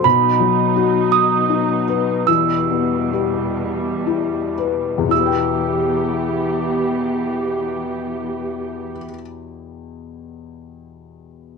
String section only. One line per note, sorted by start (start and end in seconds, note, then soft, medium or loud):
0.04 5.07 B2 medium
0.04 2.25 F#3 medium
0.04 2.25 D#4 medium
2.28 5.09 E2 medium
2.28 5.09 G3 medium
5.11 9.04 E3 medium
5.11 9.05 B3 medium
5.11 9.05 G4 medium